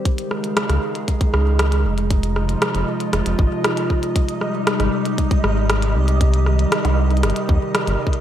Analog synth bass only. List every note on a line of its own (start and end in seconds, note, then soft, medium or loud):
0.70 0.78 C#2 loud
1.34 1.86 C#2 loud
1.85 2.56 F1 medium
2.75 2.84 F1 loud
3.13 3.22 F1 medium
3.26 3.35 F1 medium
3.39 3.48 G#1 medium
4.80 4.89 G#1 loud
5.44 5.97 G#1 loud
5.95 6.66 C2 medium
6.85 7.25 C2 loud
7.23 7.32 G1 medium
7.49 7.58 D#2 medium
7.87 7.96 G1 medium